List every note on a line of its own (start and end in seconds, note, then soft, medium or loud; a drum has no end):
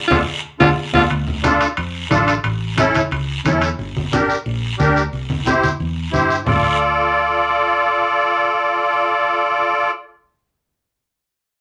0.08 0.23 D2 medium
0.08 0.21 D4 medium
0.08 0.16 F4 loud
0.08 0.21 F4 loud
0.08 0.21 A4 loud
0.08 high conga medium
0.08 high timbale loud
0.08 long guiro loud
0.60 0.73 D2 medium
0.60 0.71 D4 medium
0.60 0.71 F4 medium
0.60 0.68 F4 loud
0.60 0.71 A4 medium
0.60 high conga loud
0.60 high timbale loud
0.60 long guiro loud
0.93 1.06 D2 medium
0.93 1.05 D4 loud
0.93 1.05 F4 loud
0.93 1.03 F4 medium
0.93 1.05 A4 loud
0.93 high conga loud
0.93 high timbale loud
0.93 long guiro loud
1.10 1.64 D2 medium
1.10 high conga soft
1.10 high timbale medium
1.10 long guiro medium
1.27 high conga medium
1.43 1.67 D4 medium
1.43 1.67 F4 medium
1.43 1.67 A4 loud
1.43 high conga medium
1.43 high timbale medium
1.43 short guiro medium
1.61 high timbale medium
1.61 short guiro medium
1.77 2.04 F2 medium
1.77 high conga soft
1.77 high timbale medium
1.77 long guiro medium
2.10 2.38 A1 medium
2.10 2.34 D4 medium
2.10 2.34 F4 medium
2.10 2.34 A4 medium
2.10 high conga medium
2.10 high timbale medium
2.10 low timbale medium
2.10 short guiro medium
2.28 high timbale medium
2.28 short guiro medium
2.44 2.98 A1 medium
2.44 high conga soft
2.44 high timbale medium
2.44 long guiro medium
2.77 3.01 C#4 medium
2.77 3.01 E4 medium
2.77 3.01 A4 loud
2.77 high conga medium
2.77 high timbale medium
2.77 short guiro medium
2.94 high conga medium
2.94 high timbale medium
2.94 short guiro medium
3.11 3.38 C#2 medium
3.11 high conga soft
3.11 high timbale medium
3.11 long guiro medium
3.45 3.72 E2 loud
3.45 3.68 C#4 medium
3.45 3.68 E4 medium
3.45 3.69 A4 medium
3.45 high conga medium
3.45 high timbale medium
3.45 low timbale medium
3.45 short guiro medium
3.62 high timbale medium
3.62 short guiro medium
3.78 4.32 G1 medium
3.78 high conga soft
3.78 long guiro medium
3.97 high conga medium
4.12 4.35 D4 medium
4.12 4.36 G4 medium
4.12 4.36 A#4 medium
4.12 high conga medium
4.12 short guiro medium
4.30 short guiro medium
4.46 4.72 A#1 medium
4.46 high conga soft
4.46 long guiro medium
4.78 5.06 D2 medium
4.78 5.02 D4 medium
4.78 5.02 G4 medium
4.78 5.03 A#4 medium
4.78 high conga medium
4.78 short guiro medium
4.96 short guiro medium
5.13 5.66 C2 medium
5.13 high conga soft
5.13 long guiro medium
5.30 high conga medium
5.45 5.69 E4 medium
5.45 5.69 G4 medium
5.45 5.69 C5 medium
5.45 high conga medium
5.45 short guiro medium
5.63 high conga medium
5.63 short guiro medium
5.80 6.07 E2 medium
5.80 high conga soft
5.80 long guiro medium
6.12 6.40 G2 medium
6.12 6.36 E4 medium
6.12 6.36 G4 medium
6.12 6.37 C5 medium
6.12 high conga medium
6.12 short guiro medium
6.30 short guiro medium
6.46 10.61 D2 medium
6.46 9.91 F4 medium
6.46 9.91 A4 medium
6.46 9.91 D5 medium
6.46 low conga medium
6.46 long guiro medium